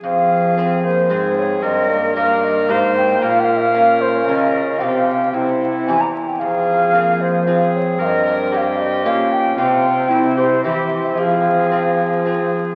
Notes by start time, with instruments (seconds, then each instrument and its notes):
0.03 cello F2, lute F2, trombone C4, viola G#4, flute F5
0.57 lute C4 G#4 C5, trombone C4
0.82 trombone A#3, flute C5
1.10 lute G#2 C4 G#4 C5, cello G#2, trombone C4, viola G#4
1.37 flute C#5
1.62 cello G2, lute G2, trombone C4, viola A#4, flute D#5
1.90 trombone A#3
2.15 trombone A#3, lute D#4 G4 A#4, viola A#4, flute F5
2.44 flute D#5
2.69 lute G#2 D#4 G4 A#4, cello G#2, viola C5, flute F5
2.97 flute G5
3.21 cello A#2, lute A#2, viola A#4, flute F5
3.39 flute G5
3.44 flute F5
3.56 flute E5
3.61 flute F5
3.74 lute C#4 F4 A#4, trombone C#4
4.01 flute C5
4.14 flute C#5
4.26 cello C#3, lute C#3 C#4 F4 A#4, flute D#5 F5
4.69 flute D#5
4.79 lute C3 C4 F4 G4, cello C3, trombone C4, viola G4, flute G5
4.83 flute F5
5.33 lute C3, cello C3, trombone C4, viola E4, flute G5
5.87 lute E2 C4 E4 G4, cello E2, flute G#5
6.01 flute A#5
6.13 flute G#5
6.27 flute G5
6.39 cello F2, lute F2, trombone C4, viola G#4, flute F5
6.94 trombone A#3, lute C4 F4 G#4
7.21 flute C5
7.46 trombone C4, lute C4 F4 G#4, viola G#4
7.74 flute C#5
7.98 cello G2, lute G2, viola A#4, flute F5
8.05 flute D#5
8.25 viola A#4
8.52 lute A#3 C#4 G4, viola G4, flute G5
8.57 flute F5
8.78 flute D#5
9.05 cello A#2, lute A#2 A#3 C#4 G4, trombone C#4, flute F5
9.31 flute G5
9.57 cello C3, lute C3 C4 F4 G4, trombone C4, viola F4, flute G5
10.10 lute C3, cello C3, viola E4, trombone E4
10.36 viola G4, flute C5
10.63 lute E3 C4 E4 G4, cello E3, trombone C4, viola G4, flute E5
11.07 flute E5
11.17 lute F3, cello F3, trombone C4, viola G#4, flute F5
11.72 lute C4 F4 G#4
12.25 lute C4 F4 G#4